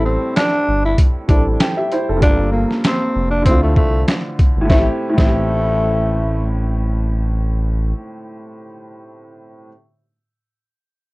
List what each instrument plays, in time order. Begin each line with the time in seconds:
Already playing: analog synth bass A1, upright piano A2 G3 C4 E4 A4
0.05 tenor saxophone C4
0.36 tenor saxophone D4, snare, closed hi-hat
0.68 analog synth bass G1
0.85 tenor saxophone E4
0.98 kick, closed hi-hat
1.28 analog synth bass A1, upright piano A2 G3 C4 E4, tenor saxophone D4, kick, closed hi-hat
1.32 upright piano A4
1.60 upright piano G5, snare, closed hi-hat
1.77 upright piano G4 E5
1.92 upright piano E4 C5, closed hi-hat
2.09 analog synth bass F1, upright piano C4 A4
2.16 upright piano G2 G3
2.21 analog synth bass G1, upright piano A3 F4, tenor saxophone D4, kick, closed hi-hat
2.25 upright piano A#3 A4
2.52 tenor saxophone A#3
2.71 snare
2.84 tenor saxophone C4, snare, closed hi-hat
3.16 analog synth bass F1
3.31 tenor saxophone D4
3.42 upright piano D3 A3, tenor saxophone C4, kick, closed hi-hat
3.46 analog synth bass D2, upright piano C4 E4
3.51 upright piano F4
3.63 tenor saxophone A3
3.76 analog synth bass C2, tenor saxophone A3, kick
4.08 snare, closed hi-hat
4.39 kick, closed hi-hat
4.57 analog synth bass G1
4.61 upright piano A2
4.65 upright piano A3
4.70 analog synth bass A1, tenor saxophone A3, upright piano C4, kick, snare
4.74 upright piano E4
4.78 upright piano G4
5.09 upright piano A2
5.14 upright piano A3
5.18 analog synth bass A1, tenor saxophone A3, upright piano C4, kick, snare
5.22 upright piano E4
5.26 upright piano G4